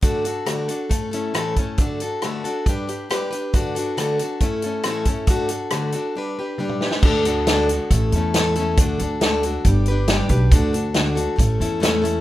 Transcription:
<<
  \new Staff \with { instrumentName = "Steel-string acoustic guitar" } { \time 4/4 \key d \major \tempo 4 = 138 <d a d' fis' a'>8 <d' fis' a'>8 <d a d' fis' a'>8 <d' fis' a'>8 <a cis' e' a'>8 <a cis' e' a'>8 <a, e a cis' e' a'>8 <a cis' e' a'>8 | <d a d' fis' a'>8 <d' fis' a'>8 <d a d' fis' a'>8 <d' fis' a'>8 <g d' g' b'>8 <d' g' b'>8 <g d' g' b'>8 <d' g' b'>8 | <d a d' fis' a'>8 <d' fis' a'>8 <d a d' fis' a'>8 <d' fis' a'>8 <a cis' e' a'>8 <a cis' e' a'>8 <a, e a cis' e' a'>8 <a cis' e' a'>8 | <d a d' fis' a'>8 <d' fis' a'>8 <d a d' fis' a'>8 <d' fis' a'>8 <g d' g' b'>8 <d' g' b'>8 <g d' g' b'>8 <d' g' b'>8 |
<d a d' fis' a'>8 <d' fis' a'>8 <d a d' fis' a'>8 <d' fis' a'>8 <a cis' e' a'>8 <a cis' e' a'>8 <a, e a cis' e' a'>8 <a cis' e' a'>8 | <d a d' fis' a'>8 <d' fis' a'>8 <d a d' fis' a'>8 <d' fis' a'>8 <g d' g' b'>8 <d' g' b'>8 <g d' g' b'>8 <d' g' b'>8 | <d a d' fis' a'>8 <d' fis' a'>8 <d a d' fis' a'>8 <d' fis' a'>8 <a cis' e' a'>8 <a cis' e' a'>8 <a, e a cis' e' a'>8 <a cis' e' a'>8 | }
  \new Staff \with { instrumentName = "Upright bass" } { \clef bass \time 4/4 \key d \major r1 | r1 | r1 | r1 |
d,2 a,,8 e,4. | d,8 d,4. g,,4. b,,8 | d,2 a,,8 e,4. | }
  \new DrumStaff \with { instrumentName = "Drums" } \drummode { \time 4/4 <hh bd>8 hh8 <hh ss>8 hh8 <hh bd>8 hh8 <hh ss>8 <hh bd>8 | <hh bd>8 hh8 <hh ss>8 hh8 <hh bd>8 hh8 <hh ss>8 hh8 | <hh bd>8 hh8 <hh ss>8 hh8 <hh bd>8 hh8 <hh ss>8 <hh bd>8 | <hh bd>8 hh8 <hh ss>8 hh8 r4 tommh16 toml16 sn16 sn16 |
<cymc bd>8 hh8 <hh sn>8 hh8 <hh bd>8 hh8 <hh sn>8 hh8 | <hh bd>8 hh8 <hh sn>8 hh8 <hh bd>8 hh8 <hh sn>8 <hh bd>8 | <hh bd>8 hh8 <hh sn>8 hh8 <hh bd>8 hh8 <hh sn>8 hh8 | }
>>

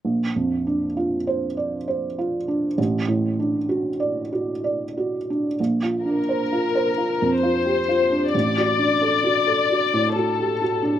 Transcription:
<<
  \new Staff \with { instrumentName = "Violin section" } { \time 3/4 \key bes \major \tempo 4 = 66 r2. | r2. | r8 bes'4. c''4 | d''2 a'4 | }
  \new Staff \with { instrumentName = "Felt piano" } { \time 3/4 \key bes \major \tuplet 3/2 { bes,,8 f,8 d'8 f'8 c''8 d''8 c''8 f'8 d'8 } | \tuplet 3/2 { a,,8 a,8 d'8 fis'8 d''8 fis'8 d''8 fis'8 d'8 } | bes,,16 f'16 d'16 c''16 f'16 c''16 f'16 f,16 f'16 g'16 f'16 d'16 | a,,16 fis'16 d'16 a'16 fis'16 a'16 fis'16 a,16 fis'16 g'16 fis'16 d'16 | }
>>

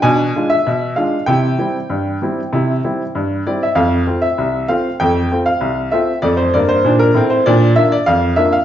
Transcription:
<<
  \new Staff \with { instrumentName = "Upright piano" } { \time 2/4 \key f \major \tempo 4 = 97 gis''8. e''8. f''8 | g''2~ | g''4. d''16 e''16 | f''8. e''8. f''8 |
g''8. f''8. e''8 | d''16 c''16 d''16 c''8 bes'8 c''16 | d''8 e''16 d''16 f''8 e''16 f''16 | }
  \new Staff \with { instrumentName = "Upright piano" } { \time 2/4 \key f \major <b, d'>8 <gis d' f'>8 b,8 <gis d' f'>8 | <c e'>8 <g c' e'>8 g,8 <g c' e'>8 | <c e'>8 <g c' e'>8 g,8 <g c' e'>8 | <f, a>8 <a c' f'>8 c,8 <a c' f'>8 |
<f, a>8 <a c' f'>8 c,8 <a c' f'>8 | <f, a>8 <g, bes>8 <bes, d'>8 <a, c'>8 | <bes, d'>8 <bes d' f'>8 f,8 <bes d' f'>8 | }
>>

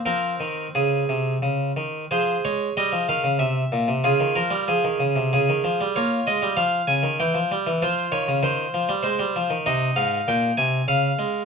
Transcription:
<<
  \new Staff \with { instrumentName = "Harpsichord" } { \time 3/4 \key f \minor \tempo 4 = 95 << { bes'4 aes'4 r4 | c''8 des''8 ees''8 f''8 e''4 | aes'8 bes'8 aes'4 aes'4 | des''8 ees''8 f''8 aes''8 g''4 |
c''8 des''8 c''4 c''4 | \key aes \major ees''8 f''8 g''8 aes''8 f''4 | } \\ { c'2. | aes'2 r4 | f'2. | f'2 r4 |
f'2. | ees'2 r4 | } >> }
  \new Staff \with { instrumentName = "Harpsichord" } { \clef bass \time 3/4 \key f \minor f8 ees8 des8 c8 des8 ees8 | f8 aes8 g16 f16 ees16 des16 c8 bes,16 c16 | des16 ees16 f16 g16 f16 ees16 des16 c16 des16 ees16 f16 g16 | bes8 aes16 g16 f8 des16 ees16 e16 f16 g16 e16 |
f8 ees16 des16 ees8 f16 g16 aes16 g16 f16 ees16 | \key aes \major c8 aes,8 bes,8 c8 des8 aes8 | }
>>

